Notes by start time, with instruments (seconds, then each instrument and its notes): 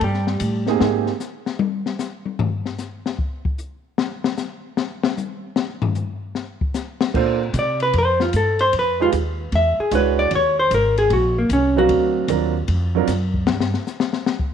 0.01 upright bass G2, hollow-body jazz guitar G3 G4, kick, ride
0.14 snare
0.27 snare
0.40 upright bass A2, kick, hi-hat pedal, ride
0.67 grand piano A#3 C4 D#4 G4 G#4, snare
0.80 upright bass G#2, grand piano A#3 C4 D#4 G4 G#4, snare
1.07 snare
1.20 snare, hi-hat pedal
1.46 snare
1.59 high tom
1.86 snare
1.99 snare, hi-hat pedal
2.25 high tom
2.39 floor tom
2.66 snare
2.78 snare, hi-hat pedal
3.06 snare
3.19 kick
3.45 kick
3.58 hi-hat pedal
3.98 snare
4.24 snare
4.37 snare, hi-hat pedal
4.77 snare
5.04 snare
5.17 hi-hat pedal, high tom
5.56 snare
5.82 floor tom
5.95 floor tom, hi-hat pedal
6.35 snare
6.61 kick
6.74 snare, hi-hat pedal
7.01 snare
7.14 upright bass A#2, grand piano A#3 D4 F4 A4 C5, kick, crash
7.54 upright bass C3, kick, hi-hat pedal, ride
7.59 hollow-body jazz guitar D5
7.80 hollow-body jazz guitar B4, ride
7.93 upright bass F2, kick, ride
7.98 hollow-body jazz guitar C5
8.20 hollow-body jazz guitar F4, snare
8.33 upright bass G2, hollow-body jazz guitar A4, kick, hi-hat pedal, ride
8.59 hollow-body jazz guitar C5, ride
8.73 upright bass F2, kick, ride
8.79 hollow-body jazz guitar B4
9.00 grand piano G#3 D#4 F4 G4 B4, hollow-body jazz guitar F4
9.12 upright bass D#2, kick, hi-hat pedal, ride
9.52 upright bass E2, hollow-body jazz guitar E5, kick, ride
9.79 hollow-body jazz guitar G#4, muted upright bass stroke
9.91 upright bass C#2, grand piano G#3 D4 E4 F#4 C#5, hollow-body jazz guitar B4, kick, hi-hat pedal, ride
10.19 hollow-body jazz guitar D5
10.31 upright bass D#2, kick, ride
10.35 hollow-body jazz guitar C#5
10.59 hollow-body jazz guitar C5
10.71 upright bass G#1, hollow-body jazz guitar A#4, kick, hi-hat pedal, ride
10.97 hollow-body jazz guitar G#4, ride
11.10 upright bass A#1, hollow-body jazz guitar F#4, kick, ride
11.38 hollow-body jazz guitar A#3
11.49 upright bass C2, hollow-body jazz guitar C#4, kick, hi-hat pedal, ride
11.76 grand piano F#3 C4 D4 A#4 F5, hollow-body jazz guitar F#4
11.89 upright bass D2, kick, ride
12.28 upright bass D#2, grand piano F#3 C4 D4 F4 A#4, kick, hi-hat pedal, ride
12.68 upright bass F2, kick, ride
12.95 grand piano F#3 C4 D4 F4 A#4
13.07 upright bass F#2, kick, snare, hi-hat pedal, ride
13.34 kick
13.47 upright bass G2, snare
13.60 snare
13.74 snare
13.87 snare, hi-hat pedal
14.00 snare
14.13 snare
14.26 snare
14.39 kick